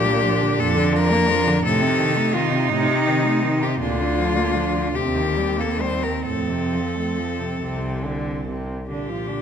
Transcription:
cello
Already playing: A#2 D4 G4
0.06 A#3
0.23 F3
0.41 D3
0.59 F2 A#2 A4
0.76 D3
0.93 F3 A#4
1.12 A#3
1.29 F3
1.48 D3
1.64 A2 C3 D#4 A4
1.82 C3
1.99 D#3
2.16 A3
2.34 D#3 F4
2.52 C3
2.69 A2 C3 D#4
2.88 C3
3.07 D#3
3.25 A3
3.43 D#3
3.62 C3 G4
3.80 D2 A#2 D4 F4
3.99 D3
4.17 F3
4.37 A#3
4.56 F3
4.75 D3
4.95 D#2 C3 C4 G4
5.15 D#3
5.36 G3
5.58 A#3 A4
5.80 G3 C5
6.03 D#3 A#4
6.26 F2 A2 A4
6.49 C3
6.73 F3
6.95 A3
7.17 F3
7.40 C3
7.61 C2 C3
8.05 D3
8.48 C3
8.88 A#2 D3 D4 G4
9.09 F3 F4
9.27 D3 D4

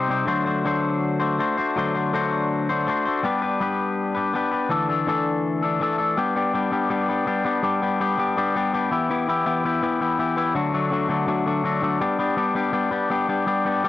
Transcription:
clean electric guitar
0.09 C3 G3 C4 D#4 G4 C5
0.26 D3 F#3 A3 D4 F#4 C5
0.46 A3 D4 F#4 C5
0.65 D3 F#3 A3 D4 F#4 C5
1.20 A3 D4 F#4 C5
1.38 A3 D4 F#4 C5
1.57 A3 D4 F#4 C5
1.76 D3 F#3 A3 D4 F#4 C5
1.94 A3 D4 F#4 C5
2.13 D3 F#3 A3 D4 F#4 C5
2.69 A3 D4 F#4 C5
2.87 A3 D4 F#4 C5
3.05 A3 D4 F#4 C5
3.23 G3 B3 D4 G4 B4
3.42 D4 G4 B4
3.60 G3 B3 D4 G4 B4
4.15 D4 G4 B4
4.34 B3 D4 G4 B4
4.51 D4 G4 B4
4.69 D3 E3 A3 D4 A4
4.89 A3 D4 A4
5.07 D3 E3 A3 D4 A4
5.62 A3 D4 A4
5.80 E3 A3 D4 A4
5.98 A3 D4 A4
6.17 G3 B3 D4 G4
6.36 G3 B3 D4 G4
6.54 G3 B3 D4 G4
6.72 G3 B3 D4 G4
6.90 G3 B3 D4 G4
7.08 G3 B3 D4 G4
7.26 G3 B3 D4 G4
7.45 G3 B3 D4 G4
7.63 G3 B3 D4 G4
7.82 G3 B3 D4 G4
8.00 G3 B3 D4 G4
8.18 G3 B3 D4 G4
8.37 G3 B3 D4 G4
8.55 G3 B3 D4 G4
8.73 G3 B3 D4 G4
8.91 E3 B3 E4 G4
9.10 E3 B3 E4 G4
9.28 E3 B3 E4 G4
9.46 E3 B3 E4 G4
9.65 E3 B3 E4 G4
9.82 E3 B3 E4 G4
10.01 E3 B3 E4 G4
10.19 E3 B3 E4 G4
10.37 E3 B3 E4 G4
10.55 D3 F#3 A3 D4 F#4
10.73 D3 F#3 A3 D4 F#4
10.91 D3 F#3 A3 D4 F#4
11.09 D3 F#3 A3 D4 F#4
11.27 D3 F#3 A3 D4 F#4
11.46 D3 F#3 A3 D4 F#4
11.64 D3 F#3 A3 D4 F#4
11.82 D3 F#3 A3 D4 F#4
12.00 G3 B3 D4 G4
12.19 G3 B3 D4 G4
12.37 G3 B3 D4 G4
12.55 G3 B3 D4 G4
12.72 G3 B3 D4 G4
12.91 G3 B3 D4 G4
13.10 G3 B3 D4 G4
13.28 G3 B3 D4 G4
13.46 G3 B3 D4 G4
13.65 G3 B3 D4 G4
13.84 G3 B3 D4 G4

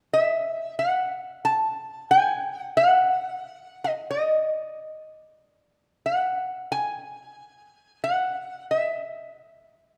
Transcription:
resonator guitar played with a steel bar
0.13 E5
0.79 F#5
1.45 A5
2.11 G#5
2.61 F#5
2.77 F#5
3.84 D#5
4.11 D#5
6.06 F#5
6.72 G#5
8.04 F#5
8.71 E5

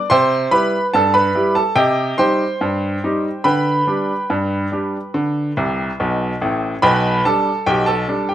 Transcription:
grand piano
0.10 C3 C5 G5 C6
0.51 G3 E4 G4 B4 B5
0.94 G2 A4 A5
1.14 B4 B5
1.35 G3 E4 G4
1.55 A4 A5
1.76 C3 G4 D#5 G5
2.18 G3 D#4 G4 C5 G5 C6
2.61 G2
3.04 G3 D#4 G4
3.44 D3 B4 G5 B5
3.87 G3 D4 G4
4.30 G2
4.72 G3 D4 G4
5.14 D3
5.57 C2 C3
6.00 B1 B2
6.41 A1 A2
6.82 B1 B2 B4 G5 B5
7.25 G3 D4 A4 A5
7.66 B1 B2 G4 G5
7.86 A4 A5
8.08 G3 D4
8.29 G4 G5

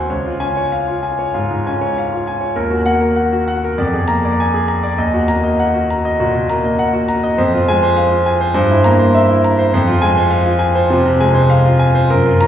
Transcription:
grand piano
Already playing: D#2 C4 F#4 C5 F#5 G#5
0.09 C#2 C#5
0.26 F4
0.40 C#4 G#5
0.57 C#5
0.72 F5
0.88 F4
1.03 G#5
1.19 C#5
1.34 G#2 F4
1.51 G#2
1.66 C#4 G#5
1.81 C#5
1.98 F5
2.12 F4
2.27 G#5
2.41 C#5
2.56 D#2 A#4
2.71 F#4
2.85 A#3 F#5
3.01 A#4
3.16 F#5
3.33 F#4
3.48 F#5
3.64 A#4
3.78 F2 D5
3.94 G#4
4.08 A#3 A#5
4.25 D5
4.40 G#5
4.54 G#4
4.68 A#5
4.83 D5
4.98 D#2 D#5
5.14 F#4
5.28 A#3 A#5
5.44 D#5
5.60 F#5
5.74 F#4
5.90 A#5
6.05 D#5
6.20 A#2 F#4
6.35 A#2
6.49 A#3 A#5
6.64 D#5
6.79 F#5
6.93 F#4
7.08 A#5
7.23 D#5
7.38 F2 C5
7.53 F4
7.68 G#3 G#5
7.83 C5
7.96 F5
8.12 F4
8.26 G#5
8.41 C5
8.54 G2 C5
8.69 E4
8.84 A#3 A#5
8.99 C5
9.15 E5
9.30 E4
9.44 A#5
9.59 C5
9.74 F2 C5
9.87 F4
10.02 G#3 G#5
10.17 C5
10.31 F5
10.46 F4
10.59 G#5
10.75 C5
10.90 C3 F4
11.05 C3
11.20 G#3 G#5
11.34 C5
11.50 F5
11.65 F4
11.79 G#5
11.95 C5
12.10 F#2 A#4
12.26 F4
12.41 C#4 A#5

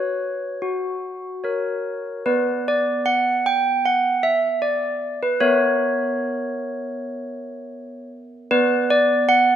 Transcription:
handbells
Already playing: F#4 B4 C#5
0.62 F#4
1.44 A#4 C#5
2.26 B3 B4 D5
2.68 D5
3.06 F#5
3.46 G5
3.86 F#5
4.23 E5
4.62 D5
5.23 B4
5.41 B3 A#4 C#5 E5
8.51 B3 B4 D5
8.90 D5
9.29 F#5

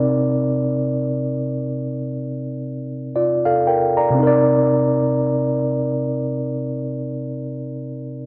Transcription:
tine electric piano
Already playing: C3 C4 D#4 A#4 D5
3.16 F4 D5
3.45 A4 F5
3.67 A#4 G5
3.97 D5 A#5
4.11 C3
4.15 C4
4.19 D#4
4.23 A#4
4.27 D5

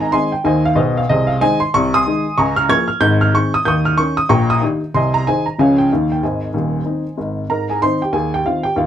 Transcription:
upright piano
Already playing: G#1 G#2 D#5 A#5
0.01 G#5
0.12 D#3 G#3 C4 D#5 G#5 C6
0.32 G5
0.44 D#2 D#3 C5 D#5 G#5
0.65 F5
0.75 B1 B2 G#4 C5 D#5
0.97 F5
1.09 C2 C3 G#4 C5 D#5
1.27 F5
1.41 D#3 G#3 D#4 C5 D#5 G#5
1.60 C6
1.74 C2 C3 C#6
1.94 G#5 C6 D#6
2.07 D#3 G#3 D#4
2.38 C#2 C#3 G#5 A#5 C#6
2.56 F6
2.69 F3 A#3 G#4 C#6 F6 G#6
2.88 F6
3.00 G#1 G#2 G6
3.21 F6
3.34 D#3 C4 G#4 C#6
3.54 D#6
3.65 D#2 D#3 C#6 D#6 G6
3.85 F6
3.98 D#3 C#4 A#4 C#6
4.17 D#6
4.29 A#1 A#2 G5 A#5 C#6
4.50 D#6
4.62 D#3 D#4 G4
4.94 C2 C3 D#5 G#5 C6
5.14 A#5
5.27 D#3 D#4 G#4 C5 D#5 G#5
5.46 A#5
5.58 C#2 C#3 F3 C#4 G#4 C#5 F5 G#5
5.78 G5
5.92 D#2 D#3 A#3 D#4 F5
6.12 G5
6.23 G#1 G#2 C5 D#5 G#5
6.54 D#1 D#2
6.85 D#3 C4 D#4
7.17 G#1 G#2
7.49 G#2 A#4 A#5
7.70 G#4 G#5
7.82 D#3 C4 D#4 C5 C6
8.02 G4 G5
8.13 D#2 G#4 G#5
8.34 G4 G5
8.45 D#3 C4 D#4 F4 F5
8.63 G4 G5
8.76 D#2 F4 F5

